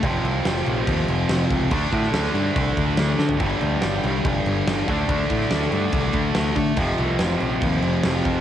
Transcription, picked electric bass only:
X:1
M:4/4
L:1/8
Q:1/4=142
K:Dphr
V:1 name="Picked electric bass" clef=bass
F,,, C,, F,,, B,,, E,, F,,, F,,, ^C,, | D,, A,, D,, G,, C,, D,, D,, D, | G,,, D,, G,,, C,, F,,, G,,, G,,, D,, | D,, A,, D,, G,, C,, D,, D,, D, |
F,,, C,, F,,, B,,, E,, F,,, F,,, F,, |]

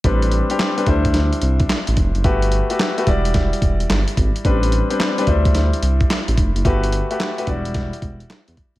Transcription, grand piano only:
X:1
M:4/4
L:1/16
Q:"Swing 16ths" 1/4=109
K:Ador
V:1 name="Grand piano"
[G,CDB]2 z [G,CDG] z [G,CDB] [G,DEc]6 z4 | [A,FGB]2 z [A,FGB] z [A,FGB] [G,EFd]6 z4 | [G,CDB]2 z [G,CDB] z [G,CDB] [G,DEc]6 z4 | [A,FGB]2 z [A,FGB] z [A,FGB] [F,G,EFd]6 z4 |]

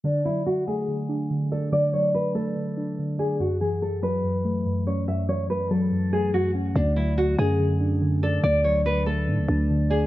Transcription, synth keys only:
X:1
M:4/4
L:1/8
Q:1/4=143
K:Dlyd
V:1 name="Synth keys" clef=bass
D, F,2 A, D, D D, d | D, F,2 A, D, D D, d | F,, E,2 F, F,, A, F,, C | F,, E,2 F, F,, A, F,, C |
D, F,2 A, D, D D, d | D, F,2 A, D, D D, d |]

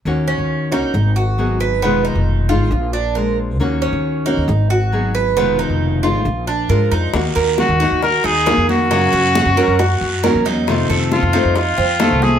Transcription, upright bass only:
X:1
M:4/4
L:1/16
Q:1/4=136
K:Ebm
V:1 name="Upright bass" clef=bass
E,,3 E,,4 B,,, A,,,8 | F,,,3 F,,,4 =A,,, B,,,8 | E,,3 E,,4 E,, A,,,8 | F,,,3 F,,,4 =A,,, B,,,4 _A,,2 F,,2 |
E,,2 E,,3 E,,2 E,,3 E,,3 F,,3 | G,,2 G,,3 G,,2 G,,3 G,,3 _F,,3 | F,,2 F,,3 F,,2 F,,3 F,,3 =C,,3 |]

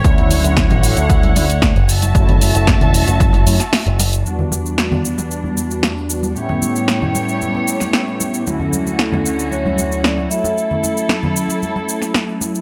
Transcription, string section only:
X:1
M:4/4
L:1/8
Q:1/4=114
K:Edor
V:1 name="String section"
[D,cf]6- [D,cf] [Fea]- | [Fea]8 | [E,D]8 | [A,Gc]8 |
[D,CF]6- [D,CF] [F,EA]- | [F,EA]8 |]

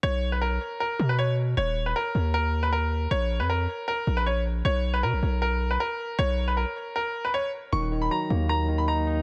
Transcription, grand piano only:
X:1
M:4/4
L:1/16
Q:1/4=156
K:Ebm
V:1 name="Grand piano"
^c3 =B _B4 B3 =B c2 z2 | d3 c B4 B3 c B4 | d3 c B4 B3 c d2 z2 | ^c3 =B _B4 B3 =B _B4 |
^c3 =B _B4 B3 =B c2 z2 | d'3 c' b4 b3 c' b4 |]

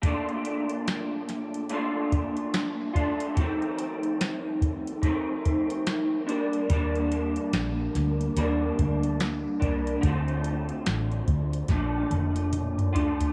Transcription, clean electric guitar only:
X:1
M:4/4
L:1/8
Q:"Swing 16ths" 1/4=72
K:Bb
V:1 name="Clean electric guitar"
[B,,A,DF]4 [B,,A,DF]3 [A,DF] | [F,,E,A,C]4 [F,,E,A,C]3 [G,B,D] | [G,B,D]4 [G,B,D]3 [G,B,D] | [D,A,CF]4 [B,,A,DF]3 [A,DF] |]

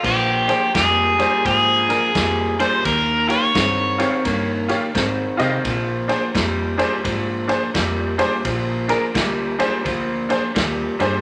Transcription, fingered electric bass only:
X:1
M:4/4
L:1/8
Q:"Swing" 1/4=86
K:Bbmix
V:1 name="Fingered electric bass" clef=bass
B,,,2 F,,2 A,,2 F,,2 | E,,2 G,,2 G,,2 A,, C, | B,,,2 F,,2 A,,2 F,,2 | B,,,2 D,,2 D,,2 E,, G,, |]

